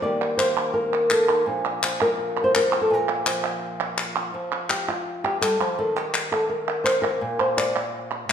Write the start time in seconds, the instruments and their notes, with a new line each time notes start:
0.02 nylon-string guitar D#3 A#3 D#4 G4 D5
0.22 clap
0.37 nylon-string guitar A#3 C5, clap
0.57 clap
0.74 nylon-string guitar A#4
0.94 clap
1.10 nylon-string guitar A4, clap
1.29 nylon-string guitar D#4, clap
1.46 nylon-string guitar A#2 F3 D4 F4
1.65 clap
1.83 nylon-string guitar F3, clap
2.01 nylon-string guitar A#4, clap
2.44 nylon-string guitar C5
2.55 nylon-string guitar A#4, clap
2.72 clap
2.81 nylon-string guitar A4
2.90 nylon-string guitar A#2 A#4
3.09 clap
3.26 nylon-string guitar F3, clap
3.44 clap
3.80 clap
3.98 clap
4.16 clap
4.34 nylon-string guitar F3
4.52 clap
4.70 nylon-string guitar G4, clap
4.88 nylon-string guitar F4, clap
5.24 nylon-string guitar G4, clap
5.41 nylon-string guitar G3 A4, clap
5.60 nylon-string guitar F3, clap
5.79 nylon-string guitar D#3 A4
5.96 nylon-string guitar G4, clap
6.14 clap
6.32 nylon-string guitar A4, clap
6.49 nylon-string guitar A#4
6.68 clap
6.84 nylon-string guitar C5, clap
7.02 nylon-string guitar A#4, clap
7.21 nylon-string guitar A#2
7.39 nylon-string guitar C5, clap
7.57 nylon-string guitar D5, clap
7.76 clap
8.11 clap
8.29 nylon-string guitar A2